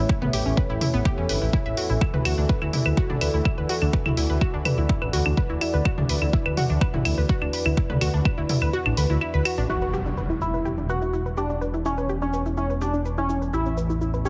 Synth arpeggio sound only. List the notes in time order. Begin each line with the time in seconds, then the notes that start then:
0.09 E4
0.22 B3
0.33 G4
0.46 C#4
0.57 B4
0.70 E4
0.81 E4
0.94 B3
1.05 G4
1.18 C#4
1.29 B4
1.42 E4
1.53 E4
1.66 E5
1.77 F#4
1.90 E4
2.01 E4
2.14 B4
2.25 F#4
2.38 D4
2.49 B4
2.62 E4
2.73 E4
2.86 B4
2.97 F#4
3.10 D4
3.21 B4
3.34 E4
3.45 E4
3.58 B4
3.69 F#4
3.82 D4
3.93 B4
4.06 E4
4.17 E4
4.30 B4
4.41 F#4
4.54 D4
4.65 B4
4.78 E4
4.89 E4
5.02 B4
5.13 F#4
5.26 D4
5.37 B4
5.50 E4
5.61 E4
5.74 B4
5.85 F#4
5.98 D4
6.09 B4
6.22 E4
6.33 E4
6.46 B4
6.57 F#4
6.70 D4
6.81 B4
6.94 E4
7.05 E4
7.18 B4
7.29 F#4
7.42 D4
7.53 B4
7.66 E4
7.77 E4
7.90 B4
8.01 F#4
8.14 D4
8.25 B4
8.38 E4
8.49 E4
8.62 B4
8.73 F#4
8.86 D4
8.97 B4
9.10 E4
9.21 E4
9.34 B4
9.45 F#4
9.58 D4
9.69 E4
9.82 B4
9.93 G4
10.06 D4
10.17 B4
10.30 E4
10.41 E4
10.54 B4
10.65 G4
10.78 D4
10.89 B4
11.02 E4
11.13 E4
11.26 B4
11.37 G4
11.50 D4
11.61 B4
11.74 E4
11.85 E4
11.98 B4
12.09 G4
12.22 D4
12.33 B4
12.46 E4
12.57 E4
12.70 B4
12.81 G4
12.94 D4
13.05 B4
13.18 E4
13.29 E4
13.42 B4
13.53 G4
13.66 C#4
13.77 B4
13.90 E4
14.01 E4
14.14 B4
14.25 G4